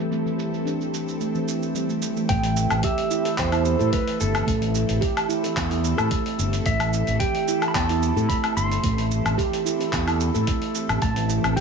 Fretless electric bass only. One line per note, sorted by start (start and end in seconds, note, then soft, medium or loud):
0.00 2.27 A1 medium
2.30 2.65 A1 medium
2.71 2.81 A1 medium
3.39 3.74 E2 medium
3.80 3.90 A2 medium
4.21 4.41 G1 medium
4.48 4.83 A1 medium
4.90 4.99 A1 medium
5.57 5.92 E2 loud
5.99 6.08 A2 medium
6.39 6.59 G1 medium
6.66 7.02 A1 medium
7.08 7.17 A1 medium
7.75 8.11 E2 loud
8.16 8.26 A2 medium
8.57 8.77 G1 medium
8.84 9.20 A1 medium
9.26 9.35 A1 medium
9.93 10.29 E2 loud
10.35 10.44 A2 medium
10.90 10.99 A1 medium
11.02 11.38 A1 medium
11.44 11.54 A1 medium